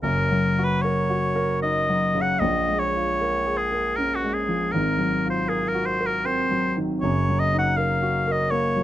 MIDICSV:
0, 0, Header, 1, 3, 480
1, 0, Start_track
1, 0, Key_signature, 6, "major"
1, 0, Tempo, 790514
1, 19, Time_signature, 3, 2, 24, 8
1, 1939, Tempo, 764331
1, 4339, Tempo, 741656
1, 5516, End_track
2, 0, Start_track
2, 0, Title_t, "Oboe"
2, 0, Program_c, 0, 68
2, 21, Note_on_c, 0, 70, 92
2, 387, Note_on_c, 0, 71, 81
2, 396, Note_off_c, 0, 70, 0
2, 500, Note_on_c, 0, 73, 86
2, 509, Note_off_c, 0, 71, 0
2, 982, Note_off_c, 0, 73, 0
2, 984, Note_on_c, 0, 75, 100
2, 1343, Note_on_c, 0, 78, 94
2, 1352, Note_off_c, 0, 75, 0
2, 1454, Note_on_c, 0, 75, 99
2, 1463, Note_off_c, 0, 78, 0
2, 1696, Note_on_c, 0, 73, 94
2, 1705, Note_off_c, 0, 75, 0
2, 2177, Note_on_c, 0, 68, 89
2, 2186, Note_off_c, 0, 73, 0
2, 2422, Note_on_c, 0, 70, 96
2, 2431, Note_off_c, 0, 68, 0
2, 2543, Note_on_c, 0, 66, 80
2, 2552, Note_off_c, 0, 70, 0
2, 2659, Note_on_c, 0, 68, 76
2, 2668, Note_off_c, 0, 66, 0
2, 2897, Note_on_c, 0, 70, 89
2, 2906, Note_off_c, 0, 68, 0
2, 3258, Note_off_c, 0, 70, 0
2, 3262, Note_on_c, 0, 72, 80
2, 3382, Note_on_c, 0, 68, 78
2, 3392, Note_off_c, 0, 72, 0
2, 3502, Note_on_c, 0, 70, 81
2, 3511, Note_off_c, 0, 68, 0
2, 3613, Note_on_c, 0, 72, 91
2, 3623, Note_off_c, 0, 70, 0
2, 3741, Note_on_c, 0, 70, 85
2, 3751, Note_off_c, 0, 72, 0
2, 3865, Note_on_c, 0, 72, 101
2, 3874, Note_off_c, 0, 70, 0
2, 4174, Note_off_c, 0, 72, 0
2, 4335, Note_on_c, 0, 73, 83
2, 4585, Note_on_c, 0, 75, 96
2, 4595, Note_off_c, 0, 73, 0
2, 4704, Note_off_c, 0, 75, 0
2, 4708, Note_on_c, 0, 78, 92
2, 4826, Note_on_c, 0, 77, 88
2, 4836, Note_off_c, 0, 78, 0
2, 5181, Note_on_c, 0, 75, 87
2, 5191, Note_off_c, 0, 77, 0
2, 5307, Note_on_c, 0, 73, 100
2, 5317, Note_off_c, 0, 75, 0
2, 5516, Note_off_c, 0, 73, 0
2, 5516, End_track
3, 0, Start_track
3, 0, Title_t, "Grand piano"
3, 0, Program_c, 1, 0
3, 0, Control_c, 1, 64, 127
3, 15, Note_on_c, 1, 30, 61
3, 22, Note_on_c, 1, 42, 66
3, 31, Control_c, 1, 64, 0
3, 150, Control_c, 1, 64, 127
3, 190, Note_on_c, 1, 54, 55
3, 354, Note_on_c, 1, 66, 54
3, 445, Note_off_c, 1, 54, 0
3, 512, Note_on_c, 1, 70, 61
3, 605, Note_off_c, 1, 66, 0
3, 667, Note_on_c, 1, 66, 59
3, 764, Note_off_c, 1, 70, 0
3, 823, Note_on_c, 1, 70, 60
3, 921, Note_off_c, 1, 66, 0
3, 987, Note_on_c, 1, 63, 52
3, 1080, Note_off_c, 1, 70, 0
3, 1149, Note_on_c, 1, 54, 51
3, 1241, Note_off_c, 1, 63, 0
3, 1304, Note_on_c, 1, 49, 51
3, 1401, Note_off_c, 1, 54, 0
3, 1436, Note_off_c, 1, 30, 0
3, 1439, Note_off_c, 1, 42, 0
3, 1461, Note_on_c, 1, 34, 62
3, 1463, Note_off_c, 1, 49, 0
3, 1467, Note_on_c, 1, 46, 63
3, 1472, Control_c, 1, 64, 0
3, 1583, Control_c, 1, 64, 127
3, 1628, Note_on_c, 1, 56, 52
3, 1790, Note_on_c, 1, 65, 50
3, 1878, Note_off_c, 1, 56, 0
3, 1951, Note_on_c, 1, 70, 55
3, 2040, Note_off_c, 1, 65, 0
3, 2106, Note_on_c, 1, 68, 58
3, 2202, Note_off_c, 1, 70, 0
3, 2269, Note_on_c, 1, 70, 54
3, 2359, Note_off_c, 1, 68, 0
3, 2433, Note_on_c, 1, 61, 47
3, 2520, Note_off_c, 1, 70, 0
3, 2594, Note_on_c, 1, 56, 48
3, 2683, Note_off_c, 1, 61, 0
3, 2749, Note_on_c, 1, 53, 51
3, 2845, Note_off_c, 1, 56, 0
3, 2876, Note_off_c, 1, 34, 0
3, 2879, Note_off_c, 1, 46, 0
3, 2906, Note_off_c, 1, 53, 0
3, 2906, Note_on_c, 1, 32, 60
3, 2912, Note_on_c, 1, 44, 57
3, 2914, Control_c, 1, 64, 0
3, 3025, Control_c, 1, 64, 127
3, 3063, Note_on_c, 1, 54, 51
3, 3229, Note_on_c, 1, 65, 49
3, 3317, Note_off_c, 1, 54, 0
3, 3380, Note_on_c, 1, 70, 61
3, 3480, Note_off_c, 1, 65, 0
3, 3541, Note_on_c, 1, 66, 54
3, 3635, Note_off_c, 1, 70, 0
3, 3701, Note_on_c, 1, 70, 56
3, 3795, Note_off_c, 1, 66, 0
3, 3855, Note_on_c, 1, 60, 54
3, 3955, Note_off_c, 1, 70, 0
3, 4019, Note_on_c, 1, 54, 49
3, 4113, Note_off_c, 1, 60, 0
3, 4184, Note_on_c, 1, 51, 47
3, 4276, Note_off_c, 1, 54, 0
3, 4316, Note_off_c, 1, 32, 0
3, 4319, Note_off_c, 1, 44, 0
3, 4342, Note_off_c, 1, 51, 0
3, 4343, Note_on_c, 1, 30, 57
3, 4351, Control_c, 1, 64, 0
3, 4353, Note_on_c, 1, 42, 65
3, 4444, Control_c, 1, 64, 127
3, 4516, Note_on_c, 1, 54, 54
3, 4674, Note_on_c, 1, 63, 52
3, 4765, Note_off_c, 1, 54, 0
3, 4830, Note_on_c, 1, 70, 53
3, 4923, Note_off_c, 1, 63, 0
3, 4991, Note_on_c, 1, 66, 54
3, 5081, Note_off_c, 1, 70, 0
3, 5153, Note_on_c, 1, 70, 60
3, 5242, Note_off_c, 1, 66, 0
3, 5307, Note_on_c, 1, 58, 52
3, 5402, Note_off_c, 1, 70, 0
3, 5471, Note_on_c, 1, 54, 47
3, 5516, Note_off_c, 1, 30, 0
3, 5516, Note_off_c, 1, 42, 0
3, 5516, Note_off_c, 1, 54, 0
3, 5516, Note_off_c, 1, 58, 0
3, 5516, End_track
0, 0, End_of_file